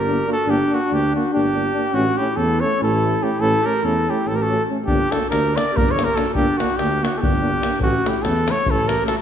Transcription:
Already playing: tuba G1, clarinet G4, flugelhorn A#4
0.07 euphonium A#3, trombone D4
0.26 euphonium A#3, trombone D4, clarinet F#4
0.32 flugelhorn A4
0.46 tuba G1, euphonium A#3, trombone D4, clarinet D4, flugelhorn G4
0.68 trombone D4
0.72 euphonium A#3, clarinet D4, flugelhorn F#4
0.88 tuba D2, trombone D4, clarinet D4
0.93 euphonium A#3, flugelhorn G4
1.12 trombone D4, clarinet D4, flugelhorn F#4
1.16 euphonium A#3
1.32 clarinet D4, trombone D4, flugelhorn G4
1.36 tuba G1, euphonium A#3
1.54 euphonium A#3, trombone D4
1.73 trombone D4
1.77 euphonium A#3
1.91 tuba A1, euphonium A3, clarinet C#4, trombone C#4, flugelhorn F#4
2.17 euphonium A3, trombone C#4, clarinet E4, flugelhorn G4
2.36 tuba E2, trombone C#4, clarinet E4, flugelhorn A4
2.41 euphonium A3
2.60 euphonium A3, trombone C#4, clarinet A4, flugelhorn C#5
2.78 tuba A1, euphonium A3, trombone C#4, clarinet E4
2.83 flugelhorn A4
3.02 euphonium A3, trombone C#4
3.22 euphonium A3, trombone C#4, clarinet E4, flugelhorn G4
3.40 tuba A1, euphonium A3, trombone C#4, clarinet E4, flugelhorn A4
3.62 euphonium A3, trombone C#4, clarinet G4, flugelhorn A#4
3.83 tuba E2, euphonium A3, trombone C#4, clarinet E4, flugelhorn A4
4.07 euphonium A3, trombone C#4, clarinet E4, flugelhorn G4
4.25 tuba A1, trombone C#4, clarinet E4, flugelhorn A4
4.31 euphonium A3
4.35 clarinet G4, flugelhorn A#4
4.42 clarinet F#4, flugelhorn A4
4.49 euphonium A3, trombone C#4
4.69 euphonium A3, trombone C#4
4.85 tuba G1, trombone D4, clarinet D4, flugelhorn G4, davul low
4.90 euphonium A#3
5.09 trombone D4, clarinet F#4, flugelhorn A4, davul high
5.15 euphonium A#3
5.23 davul high
5.29 tuba D2, euphonium A#3, trombone D4, clarinet G4, flugelhorn A#4, davul high
5.46 davul high
5.54 euphonium A#3, trombone D4, clarinet A#4, flugelhorn D5, davul high
5.72 tuba G1, euphonium A#3, trombone D4, clarinet G4, flugelhorn A#4
5.77 davul low
5.88 clarinet A4, flugelhorn C#5, davul high
5.98 euphonium A#3, trombone D4, davul high
6.04 clarinet G4, flugelhorn A#4
6.15 euphonium A#3, trombone D4, clarinet F#4, flugelhorn A4, davul high
6.27 davul high
6.34 tuba G1, euphonium A#3, trombone D4, clarinet D4, flugelhorn G4, davul low
6.58 euphonium A#3, trombone D4, clarinet D4, flugelhorn F#4, davul high
6.70 davul high
6.76 euphonium A#3, trombone D4, clarinet D4, flugelhorn G4, davul high
6.81 tuba D2
6.92 davul high
7.01 euphonium A#3, clarinet D4, trombone D4, flugelhorn F#4, davul high
7.16 clarinet F#4, flugelhorn A4
7.21 tuba G1, euphonium A#3, clarinet D4, trombone D4, flugelhorn G4, davul low
7.35 davul high
7.41 euphonium A#3, trombone D4
7.60 euphonium A#3, trombone D4, davul high
7.73 davul high
7.78 tuba A1, euphonium A3, trombone C#4, clarinet C#4, flugelhorn F#4, davul low
8.04 euphonium A3, trombone C#4, clarinet E4, davul high
8.08 flugelhorn G4
8.22 tuba E2, euphonium A3, trombone C#4, clarinet E4, flugelhorn A4, davul high
8.36 davul high
8.45 euphonium A3, trombone C#4, clarinet A4, davul high
8.51 flugelhorn C#5
8.65 tuba A1, euphonium A3, trombone C#4, davul low
8.69 clarinet E4, flugelhorn A4
8.78 davul high
8.85 euphonium A3, trombone C#4, clarinet G4, flugelhorn A#4
8.89 davul high
9.03 euphonium A3, trombone C#4, flugelhorn A4
9.08 clarinet F#4, davul high
9.17 davul high

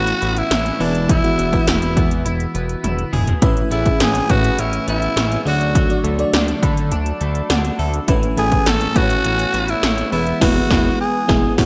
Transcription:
Already playing: analog synth bass A1, fm electric piano A2 A3 C#4 E4 B4, clean electric guitar E3 B3, tenor saxophone F#4
0.07 clean electric guitar C#4, closed hi-hat
0.21 analog synth bass A1, clean electric guitar B3, closed hi-hat
0.36 tenor saxophone E4, closed hi-hat
0.51 analog synth bass A1, clean electric guitar C#4, snare, closed hi-hat, tambourine
0.66 closed hi-hat
0.79 analog synth bass E1, clean electric guitar E3, fm electric piano E3 G#3 B3 E4 B4, tenor saxophone D4, open hi-hat
0.95 closed hi-hat
1.09 clean electric guitar E3, tenor saxophone E4, kick, closed hi-hat
1.23 fm electric piano G#3 B3 E4 F#4, closed hi-hat
1.38 analog synth bass E1, clean electric guitar B3, closed hi-hat
1.52 fm electric piano G#3 B3 E4 B4, kick, closed hi-hat
1.67 analog synth bass E1, clean electric guitar E4, tenor saxophone E4, snare, closed hi-hat, tambourine
1.82 closed hi-hat
1.96 analog synth bass E2, clean electric guitar B3, kick, closed hi-hat
2.11 closed hi-hat
2.25 analog synth bass E1, clean electric guitar E4, closed hi-hat
2.40 closed hi-hat
2.55 analog synth bass E1, clean electric guitar B3, closed hi-hat
2.69 closed hi-hat
2.84 analog synth bass E1, clean electric guitar E4, closed hi-hat, high tom
2.99 closed hi-hat
3.13 analog synth bass E1, clean electric guitar G#4, mid tom, open hi-hat
3.27 closed hi-hat, floor tom
3.42 analog synth bass A1, fm electric piano A2 A3 C#4 E4 B4, clean electric guitar E3, kick, closed hi-hat
3.57 closed hi-hat
3.71 analog synth bass A1, fm electric piano A3 C#4 E4 G#4, clean electric guitar B3, tenor saxophone E4, closed hi-hat
3.86 kick, closed hi-hat
4.00 analog synth bass A1, clean electric guitar C#4, tenor saxophone G#4, snare, closed hi-hat, tambourine
4.15 closed hi-hat
4.29 analog synth bass A2, fm electric piano A3 C#4 E4 B4, clean electric guitar B3, tenor saxophone F#4, kick, closed hi-hat
4.44 closed hi-hat
4.59 analog synth bass A1, clean electric guitar C#4, tenor saxophone E4, closed hi-hat
4.73 closed hi-hat
4.88 analog synth bass A1, clean electric guitar B3, tenor saxophone E4, closed hi-hat
5.02 closed hi-hat
5.16 analog synth bass A1, clean electric guitar C#4, snare, closed hi-hat, tambourine
5.32 closed hi-hat
5.45 analog synth bass D2, fm electric piano D3 A3 D4 F#4 D5, clean electric guitar F#3, tenor saxophone F#4, open hi-hat
5.61 closed hi-hat
5.75 clean electric guitar F#3, kick, closed hi-hat
5.89 fm electric piano A3 D4 F#4 D5, closed hi-hat
6.04 analog synth bass D2, clean electric guitar A3, closed hi-hat
6.18 fm electric piano A3 D4 F#4 D5, closed hi-hat
6.33 analog synth bass D2, clean electric guitar D4, snare, closed hi-hat, tambourine
6.48 closed hi-hat
6.62 analog synth bass D3, clean electric guitar A3, fm electric piano B5, kick, closed hi-hat
6.77 closed hi-hat
6.92 analog synth bass D2, clean electric guitar D4, fm electric piano A5, closed hi-hat
7.06 closed hi-hat
7.20 analog synth bass D2, clean electric guitar A3, closed hi-hat
7.35 closed hi-hat
7.50 analog synth bass D2, clean electric guitar D4, fm electric piano F#5, snare, closed hi-hat, tambourine
7.65 closed hi-hat
7.79 analog synth bass D2, clean electric guitar A4, fm electric piano E5, open hi-hat
7.94 closed hi-hat
8.08 analog synth bass A1, fm electric piano A2 A3 C#4 E4 B4, clean electric guitar E3, kick, closed hi-hat
8.23 closed hi-hat
8.37 analog synth bass A1, fm electric piano A3 B3 E4 A4, clean electric guitar B3, tenor saxophone G#4, closed hi-hat
8.43 fm electric piano C#4
8.52 kick, closed hi-hat
8.66 analog synth bass A1, clean electric guitar C#4, tenor saxophone A4, snare, closed hi-hat, tambourine
8.81 closed hi-hat
8.95 analog synth bass A2, fm electric piano A3 C#4 E4 B4, clean electric guitar B3, tenor saxophone F#4, kick, closed hi-hat
9.03 fm electric piano C#5
9.10 closed hi-hat
9.24 analog synth bass A1, clean electric guitar C#4, closed hi-hat
9.39 closed hi-hat
9.54 analog synth bass A1, clean electric guitar B3, closed hi-hat
9.68 tenor saxophone E4, closed hi-hat
9.83 analog synth bass A1, clean electric guitar C#4, snare, closed hi-hat, tambourine
9.98 closed hi-hat
10.12 analog synth bass E1, fm electric piano E3 G#3 B3 E4 B4, clean electric guitar B3, tenor saxophone E4, open hi-hat
10.27 closed hi-hat
10.41 analog synth bass E1, fm electric piano G#3 B3 E4 B4, tenor saxophone F#4, kick, snare, crash
10.70 analog synth bass E1, fm electric piano G#3 B3 E4 B4, kick, snare
11.01 tenor saxophone G#4
11.28 analog synth bass E1, fm electric piano G#3 B3 E4, kick, snare
11.57 analog synth bass A1, fm electric piano A2 A3 E4 F#4 C#5, kick, snare, crash

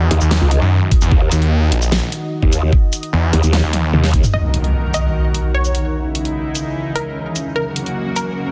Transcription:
Already playing: analog synth pad D#3 D#4 F#4 D#5
0.11 wobble bass D#2, closed hi-hat
0.21 detuned saw bass D#2, shaker
0.31 snare
0.41 wobble bass C#2
0.51 closed hi-hat
0.61 detuned saw bass F#2
0.91 kick, closed hi-hat
1.02 detuned saw bass E2, shaker
1.12 wobble bass D#2, kick
1.32 detuned saw bass D#2, closed hi-hat, shaker
1.42 closed hi-hat
1.72 detuned saw bass A#1, closed hi-hat
1.82 shaker
1.92 snare
2.12 closed hi-hat
2.42 wobble bass D#2, kick
2.53 closed hi-hat, shaker
2.73 kick
2.93 closed hi-hat, shaker
3.03 closed hi-hat
3.13 detuned saw bass E2
3.33 wobble bass D#2, closed hi-hat
3.43 wobble bass D#2, shaker
3.53 snare
3.63 detuned saw bass D#2
3.73 closed hi-hat, high tom
3.93 wobble bass D#2, mid tom
4.04 snare
4.14 kick, closed hi-hat
4.24 mid tom, shaker
4.34 analog synth pad D#2 D#3 F#4 A#4, ambient pad D#4, synth pluck D#5, impact
4.43 ambient pad F#5
4.54 closed hi-hat
4.62 ambient pad A#4, closed hi-hat
4.94 synth pluck D#5, closed hi-hat, shaker
5.34 closed hi-hat
5.55 synth pluck C#5
5.65 shaker
5.75 closed hi-hat
5.95 analog synth pad C#2 C#3 D#4 E4, ambient pad C#4
6.05 ambient pad E3
6.10 ambient pad D#5
6.15 closed hi-hat
6.25 closed hi-hat
6.55 closed hi-hat, shaker
6.95 synth pluck A#4, closed hi-hat
7.36 closed hi-hat, shaker
7.56 analog synth pad F#2 A#3 F#4, synth pluck A#4, riser
7.76 ambient pad A#4, closed hi-hat
7.86 closed hi-hat
8.03 ambient pad F#5
8.16 synth pluck A#4, closed hi-hat, shaker

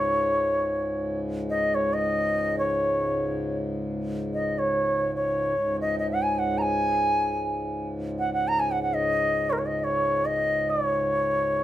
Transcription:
Already playing: harmonium C#2 G#2, bansuri C#5
1.50 bansuri D#5
1.75 bansuri C#5
1.94 bansuri D#5
2.59 bansuri C#5
4.34 bansuri D#5
4.59 bansuri C#5
5.16 bansuri C#5
5.55 harmonium C#2 G#2
5.81 bansuri D#5
5.99 bansuri D#5
6.11 bansuri F#5
6.22 bansuri G#5
6.35 bansuri F#5 G#5
6.58 bansuri G#5 A#5
8.19 bansuri F#5
8.34 bansuri F#5
8.48 bansuri A#5
8.60 bansuri G#5
8.71 bansuri F#5
8.83 bansuri F#5
8.95 bansuri D#5
9.50 bansuri A#4 C#5
9.58 bansuri C#5
9.66 bansuri D#5
9.79 bansuri D#5
9.84 bansuri C#5
10.26 bansuri D#5
10.70 bansuri C#5

